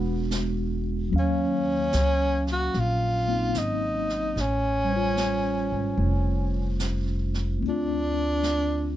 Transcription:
Already playing: E1 G#3 B3 D4 F#4
0.31 snare, hi-hat pedal
1.10 D#2 F#3 A#3 C#4, brush sweep
1.16 C#4 F5
1.93 C#2, snare, hi-hat pedal
2.47 snare
2.52 F#4
2.74 A#1, brush sweep, snare
2.79 F4
3.28 A#3 C4 D#4
3.54 G#1 D#4, snare, hi-hat pedal
4.09 snare
4.36 A1, brush sweep, snare
4.40 C#4
4.85 G3
4.89 C#4 C5
4.96 F4
5.17 snare, hi-hat pedal
5.72 G#1
5.97 F1, brush sweep
6.80 snare, hi-hat pedal
7.34 snare
7.58 A3 C4, brush sweep
7.62 D2 D4
7.68 D4 F4
8.43 snare, hi-hat pedal

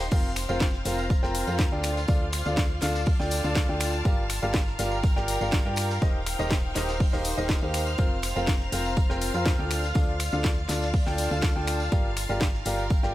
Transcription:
Already playing: D#4 C5 G5 C6 C7
0.00 tambourine
0.11 F1 C4 F4 A#4 C5 F5 F6, kick, crash, tambourine
0.36 finger snap, snare, open hi-hat, tambourine
0.49 F1 C4 F4 A#4 C5 F5, tambourine
0.60 kick, snare, tambourine
0.73 snare
0.85 F1 C4 F4 A#4 C5 F5, open hi-hat, tambourine
0.89 A#5
0.98 tambourine
1.10 kick, tambourine
1.23 F1 C4 F4 A#4 C5 G5, snare
1.35 open hi-hat, tambourine
1.47 F2 C4 F4 A#4 C5 F5, tambourine
1.59 kick, snare, tambourine
1.72 D2 D4 F4 A4 D5 G5
1.83 finger snap, open hi-hat, tambourine
1.97 snare, tambourine
2.08 D2 D4 F4 A4 D5 F5, kick, tambourine
2.09 D5, tambourine
2.32 finger snap, snare, open hi-hat, tambourine
2.45 D2 D4 F4 A4 D5 F5, tambourine
2.57 kick, snare, tambourine
2.81 D2 D4 F4 A4 D5 F5, snare, open hi-hat, tambourine
2.83 A5, tambourine
2.95 snare, tambourine
3.06 kick, open hi-hat, tambourine
3.20 D2 D4 F4 A4 D5 G5, snare
3.31 open hi-hat, tambourine
3.44 D2 D4 F4 A4 D5 F5, tambourine
3.55 kick, snare, tambourine
3.69 D2 D4 F4 A4 D5 G5
3.80 finger snap, open hi-hat, tambourine
3.93 tambourine
4.05 G1 F4 G4 A#4 D5 F5, kick, tambourine
4.30 finger snap, snare, open hi-hat, tambourine
4.42 G1 F4 G4 A#4 D5 F5, tambourine
4.49 A#4
4.54 kick, snare, tambourine
4.67 snare
4.79 G1 F4 G4 A#4 D5 F5, open hi-hat, tambourine
4.92 G5, tambourine
5.03 kick, tambourine
5.16 G1 F4 G4 A#4 D5 G5, snare
5.28 open hi-hat, tambourine
5.41 G1 F4 G4 A#4 D5 F5, tambourine
5.52 kick, snare, tambourine
5.65 G2 F4 G4 A#4 D5 G5
5.76 finger snap, open hi-hat, tambourine
5.90 snare, tambourine
6.02 D#1 D#4 G4 A#4 C5 D#5, kick, tambourine
6.26 finger snap, snare, open hi-hat, tambourine
6.32 C5
6.39 D#1 D#4 G4 A#4 C5 D#5, tambourine
6.51 kick, snare, tambourine
6.75 D#1 D#4 G4 A#4 C5 D#5, snare, open hi-hat, tambourine
6.89 snare, tambourine
7.00 kick, open hi-hat, tambourine
7.12 D#1 D#4 G4 A#4 C5 F5, snare
7.24 open hi-hat, tambourine
7.38 D#1 D#4 G4 A#4 C5 D#5, tambourine
7.49 kick, snare, tambourine
7.62 D#2 D#4 G4 A#4 C5 F5
7.74 finger snap, open hi-hat, tambourine
7.87 tambourine
7.98 F1 C4 F4 A#4 C5 F5, kick, tambourine
8.22 finger snap, snare, open hi-hat, tambourine
8.34 F1 C4 F4 A#4 C5 F5 A#5, tambourine
8.47 kick, snare, tambourine
8.61 snare
8.72 F1 C4 F4 A#4 C5 F5, open hi-hat, tambourine
8.85 tambourine
8.97 kick, tambourine
9.10 F1 C4 F4 A#4 C5 G5, snare
9.21 open hi-hat, tambourine
9.34 F2 C4 F4 A#4 C5 F5, tambourine
9.46 kick, snare, tambourine
9.59 D2 D4 F4 A4 D5 G5
9.70 finger snap, open hi-hat, tambourine
9.83 snare, tambourine
9.93 D2 D4 F4 A4 D5 F5, kick, tambourine
10.20 finger snap, snare, open hi-hat, tambourine
10.32 D2 D4 F4 A4 D5 F5, tambourine
10.44 kick, snare, tambourine
10.69 D2 D4 F4 A4 D5 F5 A5, snare, open hi-hat, tambourine
10.82 snare, tambourine
10.94 kick, open hi-hat, tambourine
11.06 D2 D4 F4 A4 D5 G5, snare
11.18 open hi-hat, tambourine
11.31 D2 D4 F4 A4 D5 F5, tambourine
11.42 kick, snare, tambourine
11.56 D2 D4 F4 A4 D5 G5
11.67 finger snap, open hi-hat, tambourine
11.80 tambourine
11.92 G1 F4 G4 A#4 D5 F5, kick, tambourine
12.06 A#4
12.17 finger snap, snare, open hi-hat, tambourine
12.29 G1 F4 G4 A#4 D5 F5, tambourine
12.41 kick, snare, tambourine
12.54 G5, snare
12.65 G1 F4 G4 A#4 D5 F5, open hi-hat, tambourine
12.79 tambourine
12.90 kick, tambourine
13.03 G1 F4 G4 A#4 D5 G5, snare

